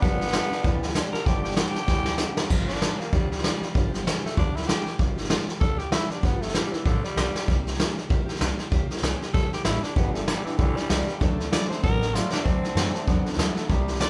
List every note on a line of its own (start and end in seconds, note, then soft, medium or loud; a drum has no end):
0.01 0.37 G1 medium
0.01 0.19 G2 medium
0.01 0.31 G2 medium
0.01 0.20 D3 medium
0.01 0.31 D3 loud
0.01 0.20 F3 medium
0.01 0.92 B3 loud
0.01 0.20 B3 medium
0.01 0.19 F4 medium
0.01 0.17 G4 loud
0.01 kick loud
0.01 snare soft
0.18 0.31 F3 soft
0.18 0.32 B3 soft
0.18 0.33 F4 medium
0.18 0.32 G4 medium
0.18 snare soft
0.27 snare soft
0.33 0.49 G2 loud
0.33 0.49 D3 loud
0.33 0.51 F3 medium
0.33 0.51 B3 medium
0.33 0.51 F4 medium
0.33 0.49 G4 medium
0.33 snare loud
0.33 hi-hat pedal loud
0.50 0.63 G2 medium
0.50 0.63 D3 medium
0.50 0.62 F3 medium
0.50 0.63 B3 medium
0.50 0.64 F4 medium
0.50 0.63 G4 medium
0.50 muted upright bass stroke medium
0.50 snare soft
0.63 0.98 D2 medium
0.63 0.81 G2 loud
0.63 0.92 G2 medium
0.63 0.82 D3 medium
0.63 0.93 E3 loud
0.63 0.82 F3 loud
0.63 0.82 B3 loud
0.63 0.81 F4 medium
0.63 0.80 G4 loud
0.63 kick loud
0.63 snare soft
0.81 0.92 F3 medium
0.81 0.93 B3 medium
0.81 0.94 F4 medium
0.81 0.94 G4 medium
0.81 snare soft
0.89 snare soft
0.93 1.11 G2 medium
0.93 1.11 D3 medium
0.93 1.12 F3 medium
0.93 1.13 B3 medium
0.93 1.12 F4 medium
0.93 1.11 G4 medium
0.93 snare loud
0.93 hi-hat pedal medium
1.12 1.24 G2 medium
1.12 1.25 D3 medium
1.12 1.25 F3 soft
1.12 1.25 B3 soft
1.12 1.25 F4 medium
1.12 1.25 G4 medium
1.12 1.28 A#4 loud
1.12 muted upright bass stroke medium
1.12 snare soft
1.25 1.60 G1 medium
1.25 1.43 G2 medium
1.25 1.54 G2 medium
1.25 1.44 D3 medium
1.25 1.54 D3 medium
1.25 1.44 F3 medium
1.25 1.44 B3 medium
1.25 1.43 F4 medium
1.25 1.43 G4 loud
1.25 1.41 G4 medium
1.25 kick loud
1.25 snare soft
1.43 1.54 F3 soft
1.43 1.56 B3 soft
1.43 1.57 F4 soft
1.43 1.56 G4 medium
1.43 snare soft
1.51 snare soft
1.55 1.73 G2 medium
1.55 1.74 D3 medium
1.55 1.74 F3 medium
1.55 1.75 B3 medium
1.55 1.74 F4 medium
1.55 2.47 G4 loud
1.55 1.73 G4 medium
1.55 snare loud
1.55 hi-hat pedal medium
1.74 1.87 G2 medium
1.74 1.87 D3 medium
1.74 1.86 F3 medium
1.74 1.87 B3 medium
1.74 1.87 F4 soft
1.74 1.87 G4 medium
1.74 muted upright bass stroke medium
1.74 snare soft
1.87 2.22 D2 medium
1.87 2.05 G2 medium
1.87 2.16 G2 medium
1.87 2.05 D3 loud
1.87 2.17 E3 medium
1.87 2.06 F3 medium
1.87 2.06 B3 medium
1.87 2.05 F4 medium
1.87 2.04 G4 medium
1.87 kick loud
1.87 snare medium
2.05 2.17 F3 medium
2.05 2.18 B3 medium
2.05 2.19 F4 soft
2.05 2.19 G4 medium
2.05 snare medium
2.18 2.35 G2 medium
2.18 2.35 D3 medium
2.18 2.37 F3 medium
2.18 2.37 B3 medium
2.18 2.36 F4 medium
2.18 snare medium
2.18 hi-hat pedal medium
2.22 2.35 G4 medium
2.36 2.49 G2 medium
2.36 2.49 D3 medium
2.36 2.49 F3 soft
2.36 2.49 B3 medium
2.36 2.50 F4 medium
2.36 2.49 G4 medium
2.36 muted upright bass stroke medium
2.36 snare loud
2.49 2.84 G1 medium
2.49 2.68 G2 medium
2.49 2.68 D3 medium
2.49 2.68 F3 loud
2.49 2.68 B3 medium
2.49 2.67 F4 loud
2.49 2.66 G4 medium
2.49 kick loud
2.49 snare soft
2.49 crash loud
2.67 2.80 B3 soft
2.67 3.01 D4 loud
2.67 2.81 F4 medium
2.67 2.80 G4 medium
2.67 snare soft
2.71 2.78 F3 soft
2.71 snare soft
2.80 2.98 F3 medium
2.80 2.99 B3 medium
2.80 2.96 G4 medium
2.80 snare loud
2.80 hi-hat pedal loud
2.98 3.11 F3 soft
2.98 3.15 A#3 loud
2.98 3.12 B3 medium
2.98 3.12 F4 medium
2.98 3.11 G4 medium
2.98 muted upright bass stroke medium
2.98 snare soft
3.11 3.47 D2 medium
3.11 3.30 G2 medium
3.11 3.30 D3 medium
3.11 3.30 F3 medium
3.11 3.30 G3 loud
3.11 3.31 B3 medium
3.11 3.30 F4 medium
3.11 3.28 G4 loud
3.11 kick loud
3.11 snare soft
3.29 3.41 F3 soft
3.29 3.91 G3 loud
3.29 3.42 B3 soft
3.29 3.43 F4 medium
3.29 3.43 G4 medium
3.29 snare soft
3.38 snare soft
3.42 3.61 F3 medium
3.42 3.61 B3 medium
3.42 3.60 F4 medium
3.42 3.58 G4 medium
3.42 snare loud
3.42 hi-hat pedal medium
3.59 3.73 F3 soft
3.59 3.73 B3 medium
3.59 3.73 F4 medium
3.59 3.73 G4 soft
3.59 muted upright bass stroke medium
3.59 snare soft
3.72 4.09 G1 medium
3.72 3.91 G2 medium
3.72 3.92 D3 medium
3.72 3.92 F3 medium
3.72 3.91 B3 medium
3.72 3.90 F4 loud
3.72 3.89 G4 loud
3.72 kick loud
3.72 snare soft
3.90 4.02 F3 medium
3.90 4.03 B3 medium
3.90 4.04 F4 medium
3.90 4.04 G4 medium
3.90 snare soft
4.03 4.22 F3 medium
4.03 4.23 B3 medium
4.03 4.22 F4 medium
4.03 4.21 G4 medium
4.03 snare loud
4.03 hi-hat pedal loud
4.22 4.35 F3 medium
4.22 4.37 A3 loud
4.22 4.35 B3 medium
4.22 4.35 F4 medium
4.22 4.36 G4 medium
4.22 muted upright bass stroke medium
4.22 snare soft
4.35 4.71 D2 medium
4.35 4.54 G2 medium
4.35 4.54 D3 medium
4.35 4.54 F3 medium
4.35 4.54 B3 loud
4.35 4.58 D4 loud
4.35 4.53 F4 medium
4.35 4.51 G4 loud
4.35 kick loud
4.35 snare soft
4.53 4.65 F3 medium
4.53 4.66 B3 medium
4.53 4.69 E4 loud
4.53 4.67 F4 medium
4.53 4.66 G4 medium
4.53 snare soft
4.63 4.85 F3 medium
4.63 snare soft
4.67 4.85 B3 medium
4.67 4.85 F4 medium
4.67 4.97 G4 loud
4.67 4.83 G4 medium
4.67 snare loud
4.67 hi-hat pedal medium
4.84 4.97 F3 soft
4.84 4.97 B3 soft
4.84 4.97 F4 medium
4.84 4.98 G4 medium
4.84 muted upright bass stroke medium
4.84 snare soft
4.97 5.34 G1 medium
4.97 5.16 G2 medium
4.97 5.16 D3 medium
4.97 5.16 F3 medium
4.97 5.17 B3 medium
4.97 5.15 F4 medium
4.97 5.14 G4 medium
4.97 kick loud
4.97 snare soft
5.15 5.27 F3 soft
5.15 5.28 B3 medium
5.15 5.29 F4 medium
5.15 5.29 G4 medium
5.15 snare soft
5.24 5.47 F3 medium
5.24 snare soft
5.29 5.47 B3 medium
5.29 5.46 F4 medium
5.29 5.45 G4 medium
5.29 snare loud
5.29 hi-hat pedal medium
5.46 5.59 F3 medium
5.46 5.59 B3 medium
5.46 5.59 F4 medium
5.46 5.60 G4 medium
5.46 muted upright bass stroke medium
5.46 snare soft
5.59 5.95 D2 medium
5.59 5.78 G2 medium
5.59 5.78 D3 medium
5.59 5.79 F3 medium
5.59 5.77 B3 loud
5.59 5.77 F4 loud
5.59 5.75 G4 medium
5.59 5.80 A4 loud
5.59 kick loud
5.59 snare soft
5.76 5.88 F3 soft
5.76 5.89 B3 soft
5.76 5.90 F4 medium
5.76 5.90 G4 medium
5.76 5.91 G4 medium
5.76 snare soft
5.89 6.08 F3 medium
5.89 6.09 B3 medium
5.89 6.13 E4 loud
5.89 6.08 F4 medium
5.89 snare loud
5.89 hi-hat pedal medium
6.08 6.21 F3 medium
6.08 6.21 B3 medium
6.08 6.26 D4 medium
6.08 6.22 F4 medium
6.08 6.22 G4 medium
6.08 muted upright bass stroke medium
6.08 snare soft
6.21 6.57 G1 medium
6.21 6.40 G2 medium
6.21 6.40 D3 medium
6.21 6.41 F3 medium
6.21 6.41 B3 medium
6.21 6.43 B3 medium
6.21 6.41 F4 loud
6.21 6.39 G4 medium
6.21 kick loud
6.21 snare soft
6.40 6.51 F3 soft
6.40 6.57 A3 medium
6.40 6.52 B3 soft
6.40 6.53 F4 medium
6.40 6.54 G4 medium
6.40 snare soft
6.48 6.71 F3 medium
6.48 snare soft
6.53 6.74 G3 loud
6.53 6.72 B3 medium
6.53 6.71 F4 medium
6.53 6.70 G4 medium
6.53 snare loud
6.53 hi-hat pedal medium
6.71 6.85 E3 medium
6.71 6.84 F3 soft
6.71 6.84 B3 medium
6.71 6.84 F4 medium
6.71 6.85 G4 medium
6.71 muted upright bass stroke medium
6.71 snare soft
6.84 7.01 A1 medium
6.84 7.03 G2 medium
6.84 7.03 D3 medium
6.84 7.06 D3 loud
6.84 7.03 F3 medium
6.84 7.02 B3 medium
6.84 7.01 F4 medium
6.84 7.00 G4 medium
6.84 kick loud
6.84 snare soft
7.01 7.13 F3 soft
7.01 7.64 G3 loud
7.01 7.14 B3 soft
7.01 7.15 F4 soft
7.01 7.15 G4 medium
7.01 muted upright bass stroke medium
7.01 snare soft
7.14 7.32 B1 medium
7.14 7.33 F3 medium
7.14 7.34 B3 medium
7.14 7.33 F4 medium
7.14 7.32 G4 medium
7.14 snare loud
7.14 hi-hat pedal medium
7.33 7.46 F3 soft
7.33 7.47 B3 soft
7.33 7.47 F4 medium
7.33 7.47 G4 medium
7.33 muted upright bass stroke medium
7.33 snare medium
7.46 7.82 C2 medium
7.46 7.65 C3 medium
7.46 7.65 G3 loud
7.46 7.66 A#3 medium
7.46 7.65 E4 loud
7.46 7.63 G4 loud
7.46 kick loud
7.46 snare soft
7.64 7.77 A#3 soft
7.64 7.78 E4 medium
7.64 7.78 G4 medium
7.64 snare soft
7.74 7.96 G3 medium
7.74 snare soft
7.78 7.96 A#3 medium
7.78 7.96 E4 medium
7.78 7.94 G4 loud
7.78 snare loud
7.78 hi-hat pedal medium
7.95 8.08 A#3 medium
7.95 8.09 E4 medium
7.95 8.09 G4 medium
7.95 muted upright bass stroke medium
7.95 snare soft
8.09 8.26 A#1 medium
8.09 8.27 C3 medium
8.09 8.28 G3 loud
8.09 8.28 A#3 loud
8.09 8.27 E4 loud
8.09 8.25 G4 loud
8.09 kick loud
8.09 snare soft
8.26 8.39 A#3 medium
8.26 8.40 E4 medium
8.26 8.40 G4 medium
8.26 muted upright bass stroke medium
8.26 snare soft
8.35 8.58 G3 medium
8.35 snare soft
8.40 8.56 C2 medium
8.40 8.59 A#3 medium
8.40 8.56 G4 medium
8.40 snare loud
8.40 hi-hat pedal medium
8.57 8.70 A#3 soft
8.57 8.71 E4 medium
8.57 8.71 G4 medium
8.57 muted upright bass stroke medium
8.57 snare soft
8.70 8.84 C#2 medium
8.70 8.89 C#3 loud
8.70 8.89 G3 medium
8.70 8.90 A#3 loud
8.70 8.89 E4 medium
8.70 8.87 G4 loud
8.70 kick loud
8.70 snare soft
8.88 9.02 A#3 medium
8.88 9.02 E4 medium
8.88 9.02 G4 medium
8.88 muted upright bass stroke medium
8.88 snare soft
8.97 9.20 G3 medium
8.97 snare soft
9.02 9.18 C2 medium
9.02 9.21 A#3 medium
9.02 9.21 E4 medium
9.02 9.19 G4 medium
9.02 snare loud
9.02 hi-hat pedal medium
9.20 9.33 A#3 medium
9.20 9.33 E4 medium
9.20 9.33 G4 medium
9.20 muted upright bass stroke medium
9.20 snare soft
9.32 9.50 A#1 medium
9.32 9.51 C#3 medium
9.32 9.52 G3 medium
9.32 9.52 A#3 medium
9.32 9.51 E4 medium
9.32 9.49 G4 loud
9.32 9.51 A4 loud
9.32 kick loud
9.32 snare soft
9.50 9.63 A#3 soft
9.50 9.64 E4 medium
9.50 9.64 G4 medium
9.50 9.64 G4 loud
9.50 muted upright bass stroke medium
9.50 snare soft
9.63 9.80 A1 medium
9.63 9.82 G3 medium
9.63 9.83 A#3 medium
9.63 9.85 E4 loud
9.63 9.82 E4 medium
9.63 9.81 G4 medium
9.63 snare loud
9.63 hi-hat pedal medium
9.82 9.96 A#3 soft
9.82 9.96 D4 loud
9.82 9.96 E4 medium
9.82 9.96 G4 medium
9.82 muted upright bass stroke medium
9.82 snare soft
9.94 10.31 G1 medium
9.94 10.13 G2 medium
9.94 10.25 G2 medium
9.94 10.14 D3 medium
9.94 10.25 D3 medium
9.94 10.14 F3 medium
9.94 10.14 B3 medium
9.94 10.15 B3 medium
9.94 10.13 D4 medium
9.94 10.12 G4 medium
9.94 kick loud
9.94 snare soft
10.13 10.24 F3 medium
10.13 10.28 A3 medium
10.13 10.25 B3 medium
10.13 10.26 D4 medium
10.13 10.27 G4 medium
10.13 snare soft
10.25 10.43 G2 medium
10.25 10.44 D3 loud
10.25 10.44 F3 medium
10.25 10.44 G3 loud
10.25 10.45 B3 medium
10.25 10.44 D4 medium
10.25 10.42 G4 medium
10.25 snare loud
10.25 hi-hat pedal loud
10.44 10.57 G2 medium
10.44 10.57 D3 medium
10.44 10.58 E3 loud
10.44 10.57 F3 soft
10.44 10.57 B3 medium
10.44 10.58 D4 medium
10.44 10.57 G4 medium
10.44 muted upright bass stroke medium
10.44 snare soft
10.57 10.74 B1 medium
10.57 10.76 G2 medium
10.57 10.87 G2 medium
10.57 10.78 D3 loud
10.57 10.76 D3 medium
10.57 10.87 E3 loud
10.57 10.76 F3 medium
10.57 10.76 B3 medium
10.57 10.75 D4 medium
10.57 10.74 G4 medium
10.57 kick loud
10.57 snare soft
10.75 10.87 F3 soft
10.75 11.19 G3 loud
10.75 10.88 B3 medium
10.75 10.89 D4 medium
10.75 10.89 G4 medium
10.75 muted upright bass stroke medium
10.75 snare soft
10.88 11.05 C2 medium
10.88 11.06 G2 medium
10.88 11.06 D3 medium
10.88 11.07 F3 medium
10.88 11.08 B3 medium
10.88 11.05 G4 medium
10.88 snare loud
10.88 hi-hat pedal medium
11.07 11.20 G2 medium
11.07 11.20 D3 medium
11.07 11.20 F3 soft
11.07 11.20 B3 soft
11.07 11.20 D4 medium
11.07 11.20 G4 medium
11.07 muted upright bass stroke medium
11.07 snare soft
11.20 11.55 D2 medium
11.20 11.38 D3 loud
11.20 11.49 D3 medium
11.20 11.38 F#3 medium
11.20 11.49 A3 medium
11.20 11.39 C4 medium
11.20 11.38 D4 medium
11.20 11.36 A4 loud
11.20 kick loud
11.20 snare soft
11.38 11.51 C4 soft
11.38 11.51 D4 medium
11.38 11.51 A4 medium
11.38 snare soft
11.50 11.68 D3 loud
11.50 11.69 F#3 medium
11.50 11.68 A3 loud
11.50 11.70 C4 medium
11.50 11.69 D4 medium
11.50 11.67 A4 medium
11.50 11.68 D5 loud
11.50 snare loud
11.50 hi-hat pedal loud
11.68 11.81 D3 medium
11.68 11.82 A3 medium
11.68 11.81 C4 medium
11.68 11.82 D4 medium
11.68 11.82 A4 medium
11.68 11.82 C5 medium
11.68 muted upright bass stroke medium
11.68 snare soft
11.81 12.18 A1 medium
11.81 12.00 D3 medium
11.81 12.11 D3 medium
11.81 12.00 F#3 medium
11.81 12.11 B3 medium
11.81 12.01 C4 medium
11.81 12.00 D4 loud
11.81 11.98 A4 loud
11.81 12.16 A#4 loud
11.81 kick loud
11.81 snare soft
11.99 12.12 C4 soft
11.99 12.13 D4 soft
11.99 12.13 A4 soft
11.99 snare soft
12.12 12.30 D3 medium
12.12 12.31 F#3 medium
12.12 12.30 A3 loud
12.12 12.32 C4 medium
12.12 12.31 D4 medium
12.12 12.32 F4 loud
12.12 12.29 A4 medium
12.12 snare medium
12.12 hi-hat pedal medium
12.31 12.44 D3 medium
12.31 12.44 A3 medium
12.31 12.44 C4 soft
12.31 12.43 D4 loud
12.31 12.45 D4 soft
12.31 12.44 A4 medium
12.31 muted upright bass stroke medium
12.31 snare medium
12.44 12.58 D2 medium
12.44 12.62 D3 medium
12.44 12.73 D3 medium
12.44 12.63 F#3 medium
12.44 12.73 A3 medium
12.44 13.35 C4 loud
12.44 12.63 C4 medium
12.44 12.62 D4 medium
12.44 12.60 A4 medium
12.44 kick loud
12.44 snare soft
12.62 12.75 C4 soft
12.62 12.76 D4 soft
12.62 12.75 A4 medium
12.62 muted upright bass stroke medium
12.62 snare soft
12.75 12.91 F#2 medium
12.75 12.92 D3 loud
12.75 12.93 F#3 medium
12.75 12.92 A3 loud
12.75 12.94 C4 medium
12.75 12.94 D4 medium
12.75 12.92 A4 medium
12.75 snare loud
12.75 hi-hat pedal medium
12.93 13.06 D3 medium
12.93 13.06 A3 medium
12.93 13.06 C4 medium
12.93 13.07 D4 medium
12.93 13.06 A4 medium
12.93 muted upright bass stroke medium
12.93 snare soft
13.07 13.23 E2 medium
13.07 13.25 D3 loud
13.07 13.36 D3 medium
13.07 13.25 F#3 medium
13.07 13.36 B3 medium
13.07 13.25 C4 loud
13.07 13.25 D4 loud
13.07 13.23 A4 medium
13.07 kick loud
13.07 snare soft
13.24 13.38 D4 medium
13.24 13.37 A4 medium
13.24 muted upright bass stroke medium
13.24 snare soft
13.28 13.37 C4 medium
13.33 13.52 D2 medium
13.33 snare soft
13.37 13.54 D3 medium
13.37 13.55 F#3 medium
13.37 13.55 A3 loud
13.37 13.56 C4 medium
13.37 13.56 D4 medium
13.37 13.54 A4 medium
13.37 snare loud
13.37 hi-hat pedal loud
13.55 13.68 D3 medium
13.55 13.68 A3 medium
13.55 13.69 D4 medium
13.55 13.69 A4 medium
13.55 muted upright bass stroke medium
13.55 snare soft
13.59 13.69 C4 medium
13.68 14.04 C2 medium
13.68 13.87 C3 medium
13.68 13.97 C3 medium
13.68 13.87 G3 medium
13.68 13.98 G3 medium
13.68 13.87 A#3 loud
13.68 13.87 E4 loud
13.68 13.85 G4 loud
13.68 kick loud
13.68 snare soft
13.86 13.99 A#3 soft
13.86 14.00 E4 medium
13.86 13.99 G4 medium
13.86 snare soft
13.94 snare soft
13.99 14.10 C3 medium
13.99 14.10 G3 medium
13.99 14.10 G3 loud
13.99 14.10 A#3 medium
13.99 14.10 E4 medium
13.99 14.10 G4 medium
13.99 14.10 D5 loud
13.99 snare loud
13.99 hi-hat pedal loud